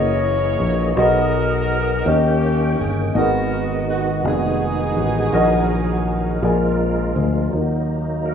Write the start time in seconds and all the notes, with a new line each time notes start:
Already playing: F#1 E3 A#3 E4 F#4 G#4 A#4 C#5 D#5
0.60 A#1
0.95 B1 B2 F#3 B3 D#4 F#4 G#4 A#4 D#5
2.04 D#2 D#3 A#3 C#4 D#4 G4 A#4 D#5 G5
2.79 G1 G#4
3.13 G#1 G#2 D#3 G#3 A#3 B3 D#4 F#4 G#4 A#4 D#5
3.17 B3 D#4
3.90 F#4
4.23 F1 B3 D#4 F#4 G#4 D5
4.27 B3 D#4
4.32 D#5
4.97 A1
5.32 A#1 F#3 F#4 A#4 D#5
6.42 A#1 A#2 F3 G#3 F4 G#4 A#4 D5 G#5
7.16 D2
7.51 D#2 D#3 F#3 A#3 D#4 F4
7.55 A#4
7.59 F#4
8.26 D#4 F#4 A#4